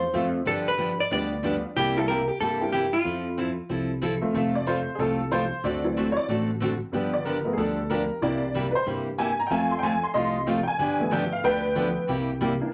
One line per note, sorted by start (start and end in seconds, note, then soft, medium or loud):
0.00 0.48 C5 loud
0.13 0.41 F2 medium
0.13 0.25 F3 medium
0.13 0.32 F3 medium
0.13 0.25 A3 medium
0.13 0.32 A3 medium
0.13 0.32 C4 medium
0.13 0.26 C4 medium
0.13 0.32 F4 medium
0.13 0.26 F4 medium
0.13 0.26 A4 medium
0.45 0.98 G2 medium
0.45 0.67 D3 medium
0.45 0.67 F3 medium
0.45 0.67 B3 medium
0.45 0.68 D4 medium
0.45 0.68 G4 medium
0.45 0.68 A4 medium
0.68 1.00 B4 medium
0.77 0.89 D3 medium
0.77 0.90 F3 medium
0.77 0.90 B3 medium
0.77 0.90 D4 medium
0.77 0.90 G4 medium
1.00 1.11 D5 medium
1.10 1.63 D2 medium
1.10 1.32 D3 soft
1.10 1.32 F3 medium
1.10 1.30 G3 medium
1.10 1.32 B3 medium
1.10 1.30 B3 medium
1.10 1.32 D4 medium
1.10 1.30 D4 medium
1.10 1.30 F4 medium
1.10 1.32 G4 medium
1.10 1.73 D5 loud
1.43 1.55 D3 medium
1.43 1.55 F3 medium
1.43 1.62 G3 medium
1.43 1.55 B3 medium
1.43 1.62 B3 medium
1.43 1.62 D4 medium
1.43 1.55 D4 medium
1.43 1.62 F4 medium
1.43 1.55 G4 medium
1.76 2.28 C2 loud
1.76 1.97 C3 medium
1.76 1.97 G3 medium
1.76 1.97 A#3 medium
1.76 1.97 E4 medium
1.76 1.98 G4 loud
1.76 1.98 G4 medium
1.96 2.07 G3 medium
1.96 2.07 A#3 medium
1.96 2.07 C4 medium
1.96 2.07 E4 loud
1.96 2.08 A4 medium
2.08 2.20 C3 medium
2.08 2.20 G3 medium
2.08 2.20 A#3 medium
2.08 2.20 E4 medium
2.08 2.21 G4 medium
2.08 2.28 A#4 medium
2.28 2.40 G4 medium
2.40 2.92 G2 medium
2.40 2.62 C3 medium
2.40 2.62 G3 medium
2.40 2.62 A#3 medium
2.40 2.62 E4 medium
2.40 2.62 G4 medium
2.40 2.61 A4 medium
2.61 2.72 G3 medium
2.61 2.72 A#3 medium
2.61 2.72 C4 medium
2.61 2.72 E4 medium
2.61 2.71 G4 medium
2.72 2.84 C3 medium
2.72 2.84 G3 medium
2.72 2.85 A#3 medium
2.72 2.85 E4 medium
2.72 2.94 G4 medium
2.72 2.85 G4 medium
2.93 3.98 F4 medium
3.05 3.57 F2 medium
3.05 3.26 F3 medium
3.05 3.26 C4 medium
3.05 3.27 E4 medium
3.05 3.27 A4 medium
3.37 3.49 F3 medium
3.37 3.49 C4 medium
3.37 3.49 E4 medium
3.37 3.49 A4 medium
3.69 4.22 C2 medium
3.69 3.91 F3 medium
3.69 3.91 C4 soft
3.69 3.91 E4 medium
3.69 3.91 A4 medium
4.02 4.13 F3 medium
4.02 4.14 C4 medium
4.02 4.14 E4 medium
4.02 4.14 A4 medium
4.21 4.32 F3 medium
4.21 4.33 A3 medium
4.21 4.33 C4 medium
4.21 4.33 F4 medium
4.34 4.86 F1 medium
4.34 4.84 F3 medium
4.34 4.55 F3 medium
4.34 4.85 A3 soft
4.34 4.56 A3 medium
4.34 4.56 C4 medium
4.34 4.85 C4 medium
4.34 4.56 F4 medium
4.34 4.56 A4 medium
4.55 4.67 D5 medium
4.66 4.78 F3 medium
4.66 4.78 A3 medium
4.66 4.78 C4 medium
4.66 4.78 F4 medium
4.66 4.79 A4 medium
4.66 4.98 C5 medium
4.95 5.50 C2 medium
4.95 5.20 F3 medium
4.95 4.98 G#4 medium
4.99 5.20 A3 medium
4.99 5.20 C4 medium
4.99 5.20 F4 medium
4.99 5.31 A4 medium
4.99 5.21 A4 medium
5.31 5.43 F3 medium
5.31 5.43 A3 medium
5.31 5.43 C4 medium
5.31 5.43 F4 medium
5.31 5.43 A4 loud
5.31 5.63 C5 loud
5.64 6.15 D2 medium
5.64 5.85 D3 medium
5.64 5.85 A3 medium
5.64 5.85 C4 medium
5.64 5.85 F#4 medium
5.64 5.86 A4 medium
5.64 6.15 D5 medium
5.83 6.26 E3 medium
5.83 6.26 F#3 medium
5.83 6.26 C4 medium
5.97 6.08 D3 medium
5.97 6.08 A3 medium
5.97 6.08 C4 medium
5.97 6.08 F#4 medium
5.97 6.08 A4 medium
6.12 6.14 C#5 medium
6.17 6.28 D5 loud
6.28 6.80 A1 medium
6.28 6.49 D3 medium
6.28 6.50 A3 medium
6.28 6.50 C4 medium
6.28 6.50 F#4 medium
6.28 6.50 A4 medium
6.60 6.72 D3 medium
6.60 6.72 A3 medium
6.60 6.72 C4 medium
6.60 6.73 F#4 medium
6.60 6.73 A4 medium
6.92 7.44 G1 medium
6.92 7.14 D3 medium
6.92 7.43 F3 medium
6.92 7.14 F3 medium
6.92 8.18 G3 soft
6.92 7.44 B3 medium
6.92 7.14 B3 medium
6.92 7.14 D4 medium
6.92 7.15 G4 medium
7.14 7.25 D5 medium
7.25 7.36 D3 medium
7.25 7.37 F3 medium
7.25 7.37 B3 medium
7.25 7.37 D4 medium
7.25 7.37 G4 medium
7.25 7.56 A#4 medium
7.45 7.56 F3 soft
7.45 7.56 A3 soft
7.45 7.56 B3 medium
7.53 7.56 G#4 medium
7.58 8.09 D2 medium
7.58 7.79 D3 medium
7.58 7.79 F3 medium
7.58 7.79 B3 medium
7.58 7.79 D4 medium
7.58 7.79 G4 medium
7.58 7.89 A4 medium
7.90 8.01 D3 medium
7.90 8.01 F3 medium
7.90 8.01 B3 medium
7.90 8.01 D4 medium
7.90 8.02 G4 medium
7.90 8.21 A#4 loud
8.21 8.74 C2 medium
8.21 8.43 C3 medium
8.21 8.45 E3 soft
8.21 8.43 G3 medium
8.21 8.46 A#3 medium
8.21 8.43 A#3 medium
8.21 8.46 D4 medium
8.21 8.43 E4 medium
8.21 8.43 G4 medium
8.21 8.73 D5 medium
8.54 8.66 C3 medium
8.54 8.66 G3 medium
8.54 8.66 A#3 medium
8.54 8.66 E4 medium
8.54 8.66 G4 medium
8.71 8.73 B4 medium
8.75 8.86 C5 loud
8.86 9.38 G2 medium
8.86 9.07 C3 medium
8.86 9.07 G3 medium
8.86 9.08 A#3 medium
8.86 9.08 E4 medium
8.86 9.08 G4 medium
9.18 9.30 C3 medium
9.18 9.30 G3 medium
9.18 9.30 A#3 medium
9.18 9.30 E4 medium
9.18 9.30 G4 medium
9.18 9.38 G#5 loud
9.39 9.51 A#5 loud
9.47 9.71 F3 medium
9.47 10.75 F3 soft
9.47 9.49 G5 medium
9.51 10.02 F2 medium
9.51 9.72 A3 medium
9.51 10.76 A3 soft
9.51 9.72 C4 medium
9.51 10.76 C4 medium
9.51 9.72 F4 medium
9.51 9.72 A4 medium
9.51 9.71 G#5 loud
9.71 9.83 C6 medium
9.79 9.94 F3 medium
9.79 9.94 A3 medium
9.79 9.82 G5 medium
9.83 9.94 C4 medium
9.83 9.95 F4 medium
9.83 9.95 A4 medium
9.83 10.03 G#5 loud
10.03 10.13 C6 medium
10.14 10.67 C2 medium
10.14 10.36 F3 soft
10.14 10.36 A3 medium
10.14 10.36 C4 medium
10.14 10.36 F4 medium
10.14 10.37 A4 medium
10.14 10.44 D#5 loud
10.14 10.46 C6 loud
10.47 10.58 F3 medium
10.47 10.59 A3 medium
10.47 10.59 C4 medium
10.47 10.59 F4 medium
10.47 10.59 A4 medium
10.63 10.65 G5 medium
10.68 11.10 G#5 loud
10.79 11.31 G2 medium
10.79 11.00 D3 medium
10.79 11.01 F3 medium
10.79 11.01 B3 medium
10.79 11.01 D4 medium
10.79 11.01 G4 medium
10.99 11.73 F3 medium
10.99 11.74 A3 soft
10.99 11.74 B3 medium
11.11 11.23 D3 medium
11.11 11.23 F3 medium
11.11 11.23 B3 medium
11.11 11.23 D4 medium
11.11 11.24 G4 medium
11.11 11.32 G5 medium
11.32 11.44 F5 medium
11.44 11.96 D2 medium
11.44 11.65 D3 medium
11.44 11.65 F3 medium
11.44 11.65 B3 medium
11.44 11.66 D4 medium
11.44 11.66 G4 medium
11.44 12.05 B4 loud
11.44 12.38 G5 loud
11.75 11.87 D3 medium
11.75 11.94 F3 medium
11.75 11.87 F3 medium
11.75 11.94 A3 soft
11.75 11.87 B3 medium
11.75 11.95 B3 medium
11.75 11.88 D4 medium
11.75 11.88 G4 medium
12.07 12.61 C2 loud
12.07 12.29 C3 medium
12.07 12.29 G3 medium
12.07 12.29 A#3 medium
12.07 12.30 E4 medium
12.07 12.30 G4 medium
12.41 12.52 C3 medium
12.41 12.52 G3 medium
12.41 12.53 A#3 medium
12.41 12.53 E4 medium
12.41 12.53 G4 medium
12.60 12.73 E3 medium
12.60 12.73 A#3 medium
12.60 12.73 D4 medium